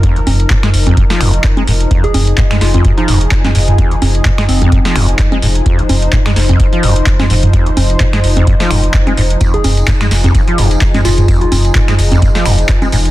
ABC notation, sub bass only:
X:1
M:4/4
L:1/8
Q:"Swing 16ths" 1/4=128
K:Fm
V:1 name="Sub bass" clef=bass
z F,,, z F,,, z F,,, z F,,, | z F,,, z F,,, z F,,, z F,,, | z F,,, z F,,, z F,,, z F,,, | z F,,, z F,,, z F,,, z F,,, |
z F,,, z F,,, z F,,, z F,,, | z F,,, z F,,, z F,,, z F,,, | z F,,, z F,,, z F,,, z F,,, |]